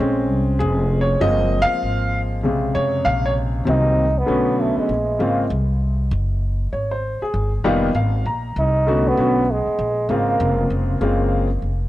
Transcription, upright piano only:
0.00 1.17 G#3 medium
0.00 1.17 C4 medium
0.00 1.17 C#4 medium
0.59 1.02 G#4 medium
1.01 1.22 C#5 medium
1.20 2.39 F3 medium
1.20 2.40 G#3 medium
1.20 2.40 A#3 medium
1.20 2.40 C4 medium
1.20 1.63 D#5 loud
1.62 2.19 F5 loud
2.43 3.63 C3 medium
2.43 3.62 C#3 medium
2.43 3.62 G#3 medium
2.75 3.06 C#5 medium
3.05 3.26 F5 loud
3.26 3.32 C#5 medium
3.65 4.04 C3 medium
3.65 4.04 D#3 medium
3.65 4.04 F#3 medium
3.65 4.05 A#3 medium
3.65 4.05 C4 medium
4.26 4.88 D3 medium
4.26 4.89 F#3 medium
4.26 4.89 A3 medium
4.26 4.89 B3 medium
4.26 4.89 C#4 medium
5.19 5.43 C#3 medium
5.19 5.43 G#3 medium
5.19 5.43 A#3 medium
5.19 5.43 C4 medium
5.19 5.43 F4 medium
6.73 6.90 C#5 medium
6.91 7.20 C5 medium
7.22 7.51 G#4 medium
7.64 7.88 D#3 medium
7.64 7.88 G3 medium
7.64 7.88 A#3 medium
7.64 7.88 B3 medium
7.64 7.88 F4 medium
7.64 7.93 D#5 medium
7.95 8.24 F5 medium
8.26 8.55 A#5 medium
8.87 9.16 D3 medium
8.87 9.17 A3 medium
8.87 9.17 B3 medium
8.87 9.17 C#4 medium
8.87 9.18 F#4 medium
9.17 9.41 D3 medium
9.17 9.41 A3 medium
9.17 9.41 B3 medium
9.17 9.41 C#4 medium
9.17 9.42 F#4 medium
10.09 10.96 C#3 medium
10.09 10.96 G#3 medium
10.09 10.97 A#3 medium
10.09 10.97 C4 medium
10.09 10.97 F4 medium
11.01 11.46 C#3 medium
11.01 11.47 G#3 medium
11.01 11.47 A#3 medium
11.01 11.47 C4 medium
11.01 11.47 F4 medium

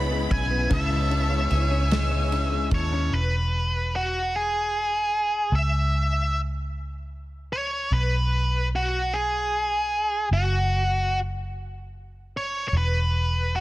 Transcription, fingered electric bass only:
0.00 0.27 C#2 medium
0.31 0.68 B1 loud
0.71 1.47 C#2 loud
1.51 2.68 C#2 medium
2.72 3.09 D#2 medium
3.11 5.48 E1 medium
5.52 7.87 C#2 medium
7.91 10.27 B1 medium
10.31 12.69 F#1 medium
12.73 13.60 E1 medium

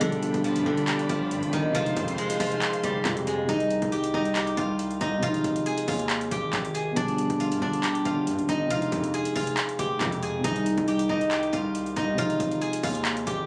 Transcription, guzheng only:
0.00 0.65 D3 loud
0.00 0.66 D4 medium
0.00 0.45 F4 medium
0.00 0.94 G#4 medium
0.44 0.71 F3 medium
0.44 1.10 F4 medium
0.66 1.58 D3 medium
0.66 1.59 D4 medium
0.88 1.58 G3 medium
0.88 2.24 G4 medium
1.09 1.58 F3 medium
1.09 1.75 F4 medium
1.53 1.80 D#3 medium
1.53 3.48 D#4 medium
1.75 2.39 F3 loud
1.75 2.40 F4 medium
2.18 3.26 G#3 medium
2.18 2.90 G#4 medium
2.40 3.54 F3 medium
2.40 4.57 F4 medium
2.84 3.54 G3 medium
2.84 3.33 G4 medium
3.27 3.54 G#3 medium
3.27 3.98 G#4 medium
3.49 4.14 D#4 medium
3.49 4.14 D#5 medium
3.92 4.35 G4 medium
3.92 4.36 G5 medium
4.14 5.01 D#4 medium
4.14 5.01 D#5 medium
4.36 5.72 G4 medium
4.36 5.72 G5 medium
4.57 5.22 F4 medium
4.57 5.23 F5 medium
5.01 7.02 D#4 medium
5.01 6.80 D#5 medium
5.23 5.88 F4 loud
5.23 5.88 F5 medium
5.66 6.38 G#4 medium
5.66 6.38 G#5 medium
5.88 7.40 F4 medium
5.88 7.40 F5 medium
6.32 6.80 G4 medium
6.32 6.80 G5 medium
6.74 7.90 G#4 medium
6.74 7.90 G#5 medium
6.96 7.61 D4 loud
6.96 7.62 D5 medium
7.40 8.05 F4 medium
7.40 8.06 F5 medium
7.62 8.55 D4 medium
7.62 8.55 D5 medium
7.84 9.20 G4 medium
7.84 9.20 G5 medium
8.05 8.70 F4 medium
8.05 8.71 F5 medium
8.49 10.44 D#4 medium
8.49 10.28 D#5 medium
8.70 9.35 F4 loud
8.70 9.36 F5 medium
9.14 9.85 G#4 medium
9.14 9.85 G#5 medium
9.36 11.52 F4 medium
9.36 11.03 F5 medium
9.79 10.29 G4 medium
9.79 10.29 G5 medium
10.23 10.94 G#4 medium
10.23 10.94 G#5 medium
10.44 11.09 D#4 loud
10.44 11.10 D#5 medium
10.88 11.31 G4 medium
10.88 11.32 G5 medium
11.09 11.96 D#4 medium
11.09 11.97 D#5 medium
11.31 12.67 G4 medium
11.31 12.67 G5 medium
11.53 12.18 F4 medium
11.53 12.19 F5 medium
11.96 13.46 D#4 medium
11.96 13.46 D#5 medium
12.18 12.83 F4 loud
12.18 12.84 F5 medium
12.61 13.33 G#4 medium
12.61 13.33 G#5 medium
12.83 13.46 F4 medium
12.83 13.46 F5 medium
13.27 13.46 G4 medium
13.27 13.46 G5 medium

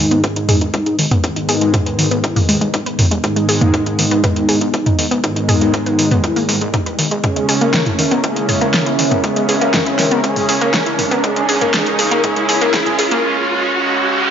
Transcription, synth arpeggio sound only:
0.11 0.19 B3 loud
0.24 0.35 B4 loud
0.36 0.44 D#4 medium
0.49 0.56 G#4 loud
0.61 0.73 D#4 medium
0.74 0.85 G#3 medium
0.86 0.98 D#4 medium
0.99 1.06 D#3 medium
1.11 1.19 B3 loud
1.24 1.31 D#4 medium
1.36 1.44 D#4 medium
1.49 1.56 G#4 loud
1.61 1.69 G#3 medium
1.74 1.85 D#4 medium
1.86 1.98 B4 medium
1.99 2.06 D#3 medium
2.11 2.19 B3 loud
2.24 2.31 D#4 medium
2.36 2.44 A#3 loud
2.49 2.56 G#3 loud
2.61 2.69 G#3 medium
2.74 2.85 D#4 medium
2.86 2.97 B4 medium
2.99 3.06 D#3 medium
3.11 3.22 G#3 medium
3.24 3.31 G#3 medium
3.36 3.44 G#3 medium
3.49 3.56 G#4 loud
3.61 3.69 A#3 loud
3.74 3.85 G#3 medium
3.86 3.98 D#4 medium
3.99 4.03 D#3 medium
4.11 4.19 B3 loud
4.24 4.35 B4 loud
4.36 4.44 D#4 medium
4.49 4.56 G#4 loud
4.61 4.72 D#4 medium
4.74 4.85 G#3 medium
4.86 4.97 D#4 medium
4.99 5.06 D#3 medium
5.11 5.19 B3 loud
5.24 5.31 D#4 medium
5.36 5.44 D#4 medium
5.49 5.56 G#4 loud
5.61 5.69 G#3 medium
5.74 5.85 D#4 medium
5.86 5.98 B4 medium
5.99 6.06 D#3 medium
6.11 6.19 B3 loud
6.24 6.31 D#4 medium
6.36 6.44 A#3 loud
6.49 6.56 G#3 loud
6.61 6.69 G#3 medium
6.74 6.85 D#4 medium
6.86 6.97 B4 medium
6.99 7.06 D#3 medium
7.11 7.22 G#3 medium
7.24 7.31 G#3 medium
7.36 7.44 G#3 medium
7.49 7.56 G#4 medium
7.61 7.69 A#3 loud
7.74 7.85 G#3 medium
7.86 7.98 E4 medium
7.99 8.03 D#3 medium
8.11 8.19 B3 loud
8.24 8.31 G#3 medium
8.36 8.44 G#3 medium
8.49 8.56 G#4 medium
8.61 8.69 A#3 loud
8.74 8.85 G#3 medium
8.86 8.97 E4 medium
8.99 9.03 D#3 medium
9.11 9.19 B3 medium
9.24 9.31 G#3 medium
9.36 9.44 G#3 medium
9.49 9.56 G#4 loud
9.61 9.69 A#3 loud
9.74 9.85 G#3 medium
9.86 9.98 E4 medium
9.99 10.03 D#3 medium
10.11 10.19 B3 loud
10.24 10.31 G#3 medium
10.36 10.44 G#3 medium
10.49 10.56 G#4 loud
10.61 10.69 A#3 loud
10.74 10.85 G#3 medium
10.86 10.97 E4 medium
10.99 11.03 D#3 medium
11.11 11.19 B3 loud
11.24 11.31 G#3 medium
11.36 11.44 G#3 medium
11.49 11.56 G#4 loud
11.61 11.69 A#3 loud
11.74 11.81 G#3 medium
11.86 11.94 G#3 medium
11.99 12.06 G#4 loud
12.11 12.19 A#3 loud
12.24 12.31 G#3 medium
12.36 12.44 G#3 medium
12.49 12.56 G#4 loud
12.61 12.69 A#3 loud
12.74 12.81 G#3 medium
12.86 12.94 G#3 medium
12.99 13.06 G#4 loud
13.11 13.19 A#3 loud

